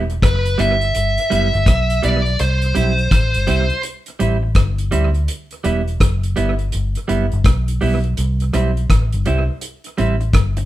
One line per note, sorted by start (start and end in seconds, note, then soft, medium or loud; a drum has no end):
0.00 0.20 E1 medium
0.10 closed hi-hat soft
0.22 0.57 F#1 medium
0.22 0.60 B4 medium
0.22 kick loud
0.22 cross-stick loud
0.22 closed hi-hat medium
0.46 closed hi-hat soft
0.58 0.93 G1 medium
0.58 0.75 G3 medium
0.58 0.75 B3 medium
0.58 0.75 E4 medium
0.58 2.08 E5 loud
0.58 closed hi-hat medium
0.81 closed hi-hat soft
0.95 1.17 G1 medium
0.95 closed hi-hat medium
1.18 closed hi-hat medium
1.30 1.53 F#1 medium
1.30 1.47 G3 medium
1.30 1.47 B3 medium
1.30 1.48 E4 medium
1.30 closed hi-hat medium
1.54 1.67 G1 medium
1.54 muted clean electric guitar stroke soft
1.54 closed hi-hat soft
1.66 2.01 B1 medium
1.66 kick loud
1.66 cross-stick loud
1.66 closed hi-hat medium
1.90 closed hi-hat medium
2.03 2.38 B1 medium
2.03 2.19 G3 medium
2.03 2.20 B3 medium
2.03 2.20 E4 medium
2.03 2.40 D5 medium
2.03 closed hi-hat medium
2.26 closed hi-hat soft
2.39 2.74 C2 medium
2.39 3.80 C5 medium
2.39 closed hi-hat medium
2.62 closed hi-hat soft
2.75 3.10 B1 medium
2.75 2.92 G3 medium
2.75 2.92 C4 medium
2.75 2.92 E4 medium
2.75 closed hi-hat medium
2.98 closed hi-hat soft
3.11 3.33 A1 medium
3.11 kick loud
3.11 cross-stick medium
3.11 closed hi-hat medium
3.34 3.47 G1 medium
3.34 closed hi-hat soft
3.47 3.69 C2 medium
3.47 3.64 G3 medium
3.47 3.64 C4 medium
3.47 3.65 E4 medium
3.47 closed hi-hat medium
3.70 closed hi-hat soft
3.83 closed hi-hat medium
4.06 closed hi-hat soft
4.19 4.54 A1 medium
4.19 4.36 G3 medium
4.19 4.36 C4 medium
4.19 4.37 E4 medium
4.19 closed hi-hat medium
4.43 muted clean electric guitar stroke soft
4.55 4.90 G1 loud
4.55 kick loud
4.55 cross-stick loud
4.55 closed hi-hat medium
4.78 closed hi-hat medium
4.91 5.26 D2 medium
4.91 5.08 G3 medium
4.91 5.09 C4 medium
4.91 5.09 E4 medium
4.91 closed hi-hat medium
5.14 closed hi-hat soft
5.28 closed hi-hat loud
5.51 closed hi-hat soft
5.64 5.99 E1 medium
5.64 5.81 G3 medium
5.64 5.81 B3 medium
5.64 5.81 E4 medium
5.64 closed hi-hat medium
5.88 closed hi-hat soft
6.00 6.35 F#1 medium
6.00 kick loud
6.00 cross-stick medium
6.00 closed hi-hat medium
6.23 closed hi-hat soft
6.36 6.71 G1 medium
6.36 6.53 G3 medium
6.36 6.53 B3 medium
6.36 6.54 E4 medium
6.36 closed hi-hat medium
6.59 closed hi-hat soft
6.72 6.95 G1 medium
6.72 closed hi-hat medium
6.95 closed hi-hat medium
7.08 7.31 F#1 medium
7.08 7.25 G3 medium
7.08 7.25 B3 medium
7.08 7.26 E4 medium
7.08 closed hi-hat medium
7.32 7.45 G1 medium
7.32 closed hi-hat soft
7.44 7.79 B1 medium
7.44 kick loud
7.44 cross-stick loud
7.44 closed hi-hat medium
7.68 closed hi-hat medium
7.81 8.16 B1 medium
7.81 7.98 G3 medium
7.81 7.98 B3 medium
7.81 7.98 E4 medium
7.81 open hi-hat soft
8.04 closed hi-hat soft
8.17 8.52 C2 loud
8.17 closed hi-hat loud
8.40 closed hi-hat soft
8.53 8.88 B1 medium
8.53 8.70 G3 medium
8.53 8.70 C4 medium
8.53 8.71 E4 medium
8.53 cross-stick medium
8.53 closed hi-hat medium
8.77 closed hi-hat soft
8.90 9.11 A1 medium
8.90 kick loud
8.90 cross-stick loud
8.90 closed hi-hat medium
9.13 9.26 G1 medium
9.13 closed hi-hat soft
9.26 9.48 C2 medium
9.26 9.42 G3 medium
9.26 9.43 C4 medium
9.26 9.43 E4 medium
9.26 closed hi-hat medium
9.61 closed hi-hat medium
9.84 closed hi-hat medium
9.98 10.33 A1 medium
9.98 10.14 G3 medium
9.98 10.15 C4 medium
9.98 10.15 E4 medium
9.98 closed hi-hat medium
10.21 muted clean electric guitar stroke medium
10.21 closed hi-hat soft
10.33 10.65 G1 medium
10.33 kick loud
10.33 cross-stick loud
10.33 closed hi-hat medium
10.57 muted clean electric guitar stroke soft
10.57 closed hi-hat medium